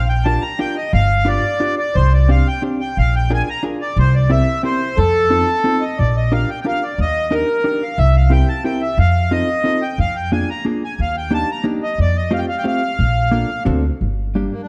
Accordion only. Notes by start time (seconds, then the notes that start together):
0.09 G5
0.25 A5
0.42 A#5
0.60 G5
0.77 D#5
0.94 F5
1.28 D5
1.79 D5
1.95 C5
2.13 D5
2.30 F5
2.48 G5
2.81 G5
2.98 F5
3.16 G5
3.34 G#5
3.50 A#5
3.82 D5
3.99 C5
4.15 D5
4.31 E5
4.65 C5
4.98 A4
5.81 D#5
5.98 D5
6.17 D#5
6.33 F5
6.50 G5
6.61 G5
6.67 F5
6.83 D5
7.01 D#5
7.34 A#4
7.83 F5
7.98 E5
8.16 F5
8.32 G5
8.49 A5
8.64 G5
8.81 E5
8.99 F5
9.32 D#5
9.82 G5
10.00 F5
10.16 G5
10.32 G#5
10.50 A#5
10.84 G#5
11.01 F5
11.17 G5
11.34 A5
11.51 A#5
11.83 D#5
12.01 D5
12.17 D#5
12.34 F5
12.39 G5
12.49 F5
12.58 G5
12.67 F5
14.53 A#3
14.62 D4